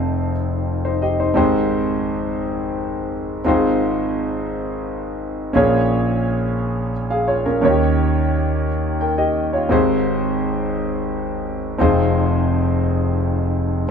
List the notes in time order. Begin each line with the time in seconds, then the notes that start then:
Already playing: F1 F2 C4 D#4 F4 A4 C5
0.85 D#4 C5
1.02 G4 D#5
1.20 D#4 C5
1.34 G#1 G#2 C4 D#4 G4 G#4 C5
3.45 G#1 G#2 C4 D#4 F4 G4 C5
3.54 G#4
5.53 A#1 A#2 C#4 F4 G#4 A#4 C#5
7.10 G#4 F5
7.28 F4 C#5
7.46 C#4 A#4
7.61 D#2 D#3 C#4 D#4 F4 A#4 C#5
7.69 G4
9.01 A#4 G5
9.18 G4 D#5
9.53 F4 C#5
9.69 G#1 G#2 C4 D#4 G4 G#4 C5
11.78 F1 F2 C4 D#4 F4 G#4 C5